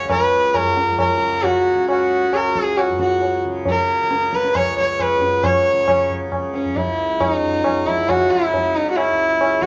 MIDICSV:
0, 0, Header, 1, 4, 480
1, 0, Start_track
1, 0, Tempo, 442804
1, 112, Time_signature, 4, 2, 24, 8
1, 10473, End_track
2, 0, Start_track
2, 0, Title_t, "Sarangi"
2, 0, Program_c, 0, 110
2, 113, Note_on_c, 0, 70, 90
2, 232, Note_off_c, 0, 70, 0
2, 232, Note_on_c, 0, 71, 90
2, 598, Note_on_c, 0, 70, 90
2, 615, Note_off_c, 0, 71, 0
2, 1074, Note_off_c, 0, 70, 0
2, 1081, Note_on_c, 0, 70, 85
2, 1566, Note_on_c, 0, 66, 80
2, 1583, Note_off_c, 0, 70, 0
2, 2047, Note_off_c, 0, 66, 0
2, 2052, Note_on_c, 0, 66, 82
2, 2544, Note_on_c, 0, 70, 84
2, 2560, Note_off_c, 0, 66, 0
2, 2858, Note_off_c, 0, 70, 0
2, 2858, Note_on_c, 0, 68, 84
2, 3016, Note_on_c, 0, 66, 74
2, 3032, Note_off_c, 0, 68, 0
2, 3250, Note_off_c, 0, 66, 0
2, 3256, Note_on_c, 0, 66, 69
2, 3702, Note_off_c, 0, 66, 0
2, 4005, Note_on_c, 0, 70, 88
2, 4713, Note_on_c, 0, 71, 83
2, 4729, Note_off_c, 0, 70, 0
2, 4935, Note_on_c, 0, 73, 96
2, 4951, Note_off_c, 0, 71, 0
2, 5175, Note_off_c, 0, 73, 0
2, 5181, Note_on_c, 0, 73, 81
2, 5428, Note_on_c, 0, 71, 90
2, 5445, Note_off_c, 0, 73, 0
2, 5906, Note_on_c, 0, 73, 84
2, 5923, Note_off_c, 0, 71, 0
2, 6618, Note_off_c, 0, 73, 0
2, 7095, Note_on_c, 0, 61, 67
2, 7335, Note_on_c, 0, 64, 78
2, 7351, Note_off_c, 0, 61, 0
2, 7816, Note_off_c, 0, 64, 0
2, 7816, Note_on_c, 0, 64, 89
2, 7935, Note_off_c, 0, 64, 0
2, 7935, Note_on_c, 0, 63, 89
2, 8530, Note_on_c, 0, 64, 78
2, 8547, Note_off_c, 0, 63, 0
2, 8773, Note_on_c, 0, 66, 84
2, 8789, Note_off_c, 0, 64, 0
2, 9007, Note_on_c, 0, 64, 84
2, 9023, Note_off_c, 0, 66, 0
2, 9493, Note_on_c, 0, 63, 81
2, 9509, Note_off_c, 0, 64, 0
2, 9643, Note_off_c, 0, 63, 0
2, 9649, Note_on_c, 0, 66, 67
2, 9711, Note_on_c, 0, 64, 95
2, 9728, Note_off_c, 0, 66, 0
2, 10430, Note_on_c, 0, 66, 83
2, 10446, Note_off_c, 0, 64, 0
2, 10473, Note_off_c, 0, 66, 0
2, 10473, End_track
3, 0, Start_track
3, 0, Title_t, "Tanpura"
3, 0, Program_c, 1, 104
3, 0, Note_on_c, 1, 42, 62
3, 0, Note_on_c, 1, 49, 57
3, 43, Note_on_c, 1, 37, 60
3, 652, Note_off_c, 1, 42, 0
3, 652, Note_on_c, 1, 42, 63
3, 1276, Note_off_c, 1, 49, 0
3, 1276, Note_on_c, 1, 49, 56
3, 1893, Note_off_c, 1, 49, 0
3, 1893, Note_on_c, 1, 49, 58
3, 2502, Note_off_c, 1, 37, 0
3, 2506, Note_on_c, 1, 37, 56
3, 3130, Note_off_c, 1, 42, 0
3, 3134, Note_on_c, 1, 42, 58
3, 3739, Note_off_c, 1, 49, 0
3, 3739, Note_on_c, 1, 49, 56
3, 4366, Note_off_c, 1, 49, 0
3, 4366, Note_on_c, 1, 49, 54
3, 4977, Note_off_c, 1, 37, 0
3, 4982, Note_on_c, 1, 37, 54
3, 5600, Note_off_c, 1, 42, 0
3, 5604, Note_on_c, 1, 42, 56
3, 6207, Note_off_c, 1, 49, 0
3, 6207, Note_on_c, 1, 49, 58
3, 6809, Note_off_c, 1, 49, 0
3, 6809, Note_on_c, 1, 49, 51
3, 7433, Note_off_c, 1, 37, 0
3, 7438, Note_on_c, 1, 37, 61
3, 8031, Note_off_c, 1, 42, 0
3, 8035, Note_on_c, 1, 42, 53
3, 8653, Note_off_c, 1, 49, 0
3, 8653, Note_on_c, 1, 49, 54
3, 9269, Note_off_c, 1, 49, 0
3, 9269, Note_on_c, 1, 49, 61
3, 9880, Note_off_c, 1, 37, 0
3, 9884, Note_on_c, 1, 37, 61
3, 10473, Note_off_c, 1, 37, 0
3, 10473, Note_off_c, 1, 42, 0
3, 10473, Note_off_c, 1, 49, 0
3, 10473, End_track
4, 0, Start_track
4, 0, Title_t, "Tabla"
4, 103, Note_on_c, 9, 60, 75
4, 103, Note_on_c, 9, 64, 69
4, 211, Note_off_c, 9, 60, 0
4, 211, Note_off_c, 9, 64, 0
4, 587, Note_on_c, 9, 60, 77
4, 587, Note_on_c, 9, 64, 66
4, 696, Note_off_c, 9, 60, 0
4, 696, Note_off_c, 9, 64, 0
4, 834, Note_on_c, 9, 62, 57
4, 943, Note_off_c, 9, 62, 0
4, 953, Note_on_c, 9, 64, 48
4, 1061, Note_off_c, 9, 64, 0
4, 1069, Note_on_c, 9, 60, 69
4, 1069, Note_on_c, 9, 64, 66
4, 1177, Note_off_c, 9, 60, 0
4, 1177, Note_off_c, 9, 64, 0
4, 1313, Note_on_c, 9, 64, 52
4, 1422, Note_off_c, 9, 64, 0
4, 1550, Note_on_c, 9, 63, 72
4, 1550, Note_on_c, 9, 64, 62
4, 1659, Note_off_c, 9, 63, 0
4, 1659, Note_off_c, 9, 64, 0
4, 2044, Note_on_c, 9, 60, 80
4, 2152, Note_off_c, 9, 60, 0
4, 2524, Note_on_c, 9, 60, 81
4, 2633, Note_off_c, 9, 60, 0
4, 2770, Note_on_c, 9, 37, 56
4, 2878, Note_off_c, 9, 37, 0
4, 3006, Note_on_c, 9, 60, 80
4, 3114, Note_off_c, 9, 60, 0
4, 3247, Note_on_c, 9, 37, 57
4, 3356, Note_off_c, 9, 37, 0
4, 3484, Note_on_c, 9, 63, 69
4, 3593, Note_off_c, 9, 63, 0
4, 3962, Note_on_c, 9, 63, 76
4, 3962, Note_on_c, 9, 64, 70
4, 4070, Note_off_c, 9, 63, 0
4, 4070, Note_off_c, 9, 64, 0
4, 4453, Note_on_c, 9, 62, 73
4, 4561, Note_off_c, 9, 62, 0
4, 4578, Note_on_c, 9, 62, 57
4, 4686, Note_off_c, 9, 62, 0
4, 4692, Note_on_c, 9, 37, 54
4, 4800, Note_off_c, 9, 37, 0
4, 4817, Note_on_c, 9, 62, 50
4, 4925, Note_off_c, 9, 62, 0
4, 4933, Note_on_c, 9, 60, 78
4, 4933, Note_on_c, 9, 64, 62
4, 5042, Note_off_c, 9, 60, 0
4, 5042, Note_off_c, 9, 64, 0
4, 5178, Note_on_c, 9, 64, 49
4, 5287, Note_off_c, 9, 64, 0
4, 5413, Note_on_c, 9, 60, 65
4, 5413, Note_on_c, 9, 64, 61
4, 5522, Note_off_c, 9, 60, 0
4, 5522, Note_off_c, 9, 64, 0
4, 5655, Note_on_c, 9, 62, 59
4, 5763, Note_off_c, 9, 62, 0
4, 5893, Note_on_c, 9, 60, 95
4, 5893, Note_on_c, 9, 64, 90
4, 6001, Note_off_c, 9, 60, 0
4, 6001, Note_off_c, 9, 64, 0
4, 6371, Note_on_c, 9, 60, 81
4, 6371, Note_on_c, 9, 64, 69
4, 6479, Note_off_c, 9, 60, 0
4, 6479, Note_off_c, 9, 64, 0
4, 6611, Note_on_c, 9, 64, 50
4, 6719, Note_off_c, 9, 64, 0
4, 6849, Note_on_c, 9, 60, 72
4, 6849, Note_on_c, 9, 64, 67
4, 6958, Note_off_c, 9, 60, 0
4, 6958, Note_off_c, 9, 64, 0
4, 7087, Note_on_c, 9, 62, 60
4, 7195, Note_off_c, 9, 62, 0
4, 7212, Note_on_c, 9, 64, 50
4, 7320, Note_off_c, 9, 64, 0
4, 7328, Note_on_c, 9, 63, 68
4, 7328, Note_on_c, 9, 64, 65
4, 7436, Note_off_c, 9, 63, 0
4, 7436, Note_off_c, 9, 64, 0
4, 7809, Note_on_c, 9, 60, 77
4, 7809, Note_on_c, 9, 64, 67
4, 7918, Note_off_c, 9, 60, 0
4, 7918, Note_off_c, 9, 64, 0
4, 8284, Note_on_c, 9, 60, 80
4, 8284, Note_on_c, 9, 64, 63
4, 8393, Note_off_c, 9, 60, 0
4, 8393, Note_off_c, 9, 64, 0
4, 8530, Note_on_c, 9, 64, 50
4, 8639, Note_off_c, 9, 64, 0
4, 8768, Note_on_c, 9, 60, 75
4, 8768, Note_on_c, 9, 64, 68
4, 8877, Note_off_c, 9, 60, 0
4, 8877, Note_off_c, 9, 64, 0
4, 9014, Note_on_c, 9, 64, 50
4, 9123, Note_off_c, 9, 64, 0
4, 9254, Note_on_c, 9, 63, 70
4, 9254, Note_on_c, 9, 64, 59
4, 9362, Note_off_c, 9, 63, 0
4, 9362, Note_off_c, 9, 64, 0
4, 9723, Note_on_c, 9, 60, 72
4, 9831, Note_off_c, 9, 60, 0
4, 10198, Note_on_c, 9, 60, 76
4, 10307, Note_off_c, 9, 60, 0
4, 10430, Note_on_c, 9, 37, 58
4, 10473, Note_off_c, 9, 37, 0
4, 10473, End_track
0, 0, End_of_file